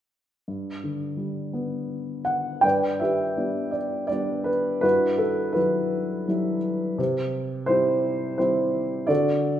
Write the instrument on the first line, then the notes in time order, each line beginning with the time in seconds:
upright piano
0.48 G2
0.84 D3
1.17 G3
1.53 B3
2.25 F#5
2.61 G2 B4 D5 G5
3.00 G4 B4 E5
3.37 G3 B3 D4
3.71 D5
4.07 G3 B3 D5
4.11 D4
4.44 B4
4.81 G2 E4 F#4 B4
5.18 A4
5.53 F#3 G3 E4 F#4 B4
5.57 E4
6.28 F#3 G3 E4
6.98 C3
7.66 G3 C4 E4 G4 C5
8.38 G3 C4 E4 G4 C5
9.07 D3 F#4 A4 D5